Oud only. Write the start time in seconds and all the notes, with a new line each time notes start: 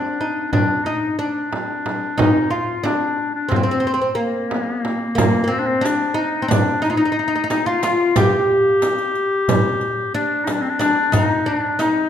Already playing: D4
0.21 D#4
0.53 D4
0.86 D#4
1.19 D4
2.18 D#4
2.51 F4
2.84 D4
3.49 C4
3.56 C4
3.63 C4
3.71 C4
3.80 C4
3.87 C4
3.94 C4
4.02 C4
4.15 A#3
5.15 A#3
5.44 A#3 C4
5.81 D4
6.14 D#4
6.42 C4
6.48 D4
6.82 D#4
6.90 D#4
6.97 D#4
7.05 D#4
7.12 D#4
7.19 D#4
7.28 D#4
7.36 D#4
7.44 D#4
7.51 D#4
7.66 F4
7.83 F4
8.16 G4
10.15 D4
10.79 D4
11.12 D#4
11.46 D4
11.79 D#4